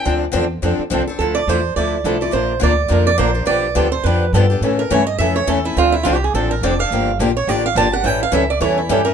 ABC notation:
X:1
M:4/4
L:1/8
Q:"Swing" 1/4=210
K:Dm
V:1 name="Steel-string acoustic guitar"
z8 | A d c2 d2 A d | c2 d2 B d c2 | d2 A c =B2 A2- |
A B ^c _e =e c A E | F E (3F G ^G A B d f- | f2 z ^c d f a ^f | g f e d ^c E G B |]
V:2 name="Steel-string acoustic guitar"
[D,F,CDA] z [D,F,CDA] z [D,F,CDA] z [D,F,CDA] z | [D,F,EA] z [D,F,EA] z [D,F,EA] z [D,F,EA] z | [D,F,B,DB] z [D,F,B,DB] z [D,F,B,DB] z [D,F,B,DB] z | [D,F,=B,DG] z [D,F,B,DG] z [D,F,B,DG] z [D,F,B,DG] z |
[E,A,^CEA] z [E,A,CEA] z [E,A,CEA] z [E,A,CEA] z | [D,F,CDA] z [D,F,CDA] z [D,F,CDA] z [D,F,CDA] z | [D,F,B,DG] z [D,F,B,DG] z [D,F,B,DG] z [D,F,B,DG] z | [E,G,^CEA] z [E,G,CEA] z [E,G,CEA] z [E,G,CEA] z |]
V:3 name="Steel-string acoustic guitar"
[D,F,CDA] z [D,F,CDA] z [D,F,CDA] z [D,F,CDA] [CDA] | [D,F,A,E] z [D,F,A,E] z [D,F,A,E] z [D,F,A,E] [F,A,E] | [D,F,B,DB] z [D,F,B,DB] z [D,F,B,DB] z [D,F,B,DB] [B,DB] | [D,F,=B,DG] z [D,F,B,DG] z [D,F,B,DG] z [D,F,B,DG] [B,DG] |
[^C,E,A,^CA] z [C,E,A,CA] z [C,E,A,CA] z [C,E,A,CA] [A,CA] | [D,F,CDA] z [D,F,CDA] z [D,F,CDA] z [D,F,CDA] [CDA] | [D,F,B,DG] z [D,F,B,DG] z [D,F,B,DG] z [D,F,B,DG] [B,DG] | [E,G,^CEA] z [E,G,CEA] z [E,G,CEA] z [E,G,CEA] [CEA] |]
V:4 name="Upright bass" clef=bass
D,,2 E,,2 F,, z C,, z | D,,2 E,,2 D,,2 C,,2 | B,,,2 D,,2 F,,2 B,,,2 | =B,,,2 D,,2 F,,2 G,,2 |
A,,2 G,,2 F,,2 E,,2 | D,,2 C,,2 A,,,2 F,,,2 | G,,,2 B,,,2 A,,,2 G,,,2 | A,,,2 ^C,,2 E,,2 G,,2 |]